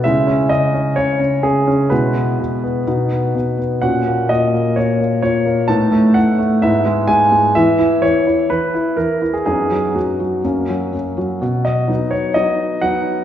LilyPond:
<<
  \new Staff \with { instrumentName = "Grand piano" } { \time 4/4 \key b \mixolydian \tempo 4 = 127 << { e''4 dis''4 cis''4 gis'4 | b'2.~ b'8 r8 | \key b \major fis''4 dis''4 cis''4 cis''4 | a''4 fis''4 e''4 gis''4 |
e''4 cis''4 b'4 ais'8. gis'16 | gis'4 fis'2 r4 | r8 dis''4 cis''8 dis''4 fis''4 | } \\ { <gis e'>1 | <gis e'>2 <b dis'>2 | <cis' fis'>1 | <b dis'>2 <b e'>2 |
<b e'>1 | <b dis'>2 <ais cis'>2 | r1 | } >> }
  \new Staff \with { instrumentName = "Grand piano" } { \clef bass \time 4/4 \key b \mixolydian cis8 cis'8 cis8 cis'8 cis8 cis'8 cis8 cis'8 | b,8 b8 b,8 b8 b,8 b8 b,8 b8 | \key b \major ais,8 ais8 ais,8 ais8 ais,8 ais8 ais,8 ais8 | a,8 a8 a,8 a8 gis,8 gis8 gis,8 gis8 |
e8 e'8 e8 e'8 e8 e'8 e8 e'8 | fis,8 fis8 fis,8 fis8 fis,8 fis8 fis,8 fis8 | b,4 <fis b dis'>4 <fis b dis'>4 <fis b dis'>4 | }
>>